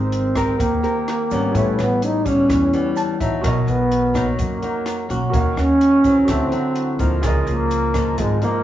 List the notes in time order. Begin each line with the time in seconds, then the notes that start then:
Already playing: G#1 G#3 C4 D#4 G4 A#4 C5
0.12 closed hi-hat
0.35 C4 G4 A#4, kick, cross-stick, closed hi-hat, shaker
0.58 D#2 D#3 A#3, kick, closed hi-hat, shaker
0.83 C4 G4 A#4, closed hi-hat, shaker
1.08 cross-stick, closed hi-hat
1.31 G#1 G3 B3 C#4, closed hi-hat, shaker
1.51 A1 A2 E4 G4, kick, closed hi-hat, shaker
1.56 A3 B4 C#5
1.79 A1 B3, cross-stick, closed hi-hat, shaker
2.02 D#4, closed hi-hat, shaker
2.25 G3 B3 C#4, kick, closed hi-hat, shaker
2.49 E2 E3, kick, cross-stick, closed hi-hat, shaker
2.73 G3 B3 C#4, closed hi-hat, shaker
2.96 A5, closed hi-hat, shaker
3.20 A1 F#3 D#4 E5, kick, closed hi-hat, shaker
3.41 B1 B2 F#4 A#4 C#5, kick, cross-stick, closed hi-hat, shaker
3.48 D#5
3.67 B1 B3, closed hi-hat, shaker
3.92 closed hi-hat
4.14 F#3 A#3 D#4, kick, cross-stick, closed hi-hat, shaker
4.39 F#2 A#3, kick, closed hi-hat, shaker
4.62 F#3 A#3 D#4, closed hi-hat, shaker
4.86 cross-stick, closed hi-hat, shaker
5.09 B1 A#3 C#4 F#4, closed hi-hat, shaker
5.30 D#2 D#3 F#4 A#4, kick, closed hi-hat
5.34 C#5 F5, shaker
5.56 D#2 C#4, cross-stick, closed hi-hat, shaker
5.81 closed hi-hat
6.04 F#3 C4 E4, kick, closed hi-hat, shaker
6.25 D2 D3 F#4 A4 C5, kick, cross-stick, closed hi-hat, shaker
6.29 C4 E5
6.52 F#3 C4 E4, closed hi-hat, shaker
6.76 closed hi-hat
6.99 D2 F3 A#3 D#4, kick, closed hi-hat, shaker
7.21 C#2 C#3 F4 G#4 A#4, kick, cross-stick, closed hi-hat, shaker
7.28 D#5
7.47 C#2 A#3, closed hi-hat, shaker
7.71 closed hi-hat, shaker
7.94 F3 A#3 D#4, kick, cross-stick, closed hi-hat, shaker
8.18 G#1 G#2 G#3, kick, closed hi-hat, shaker
8.41 F3 A#3 D#4 F4 G#4 A#4 D#5, closed hi-hat, shaker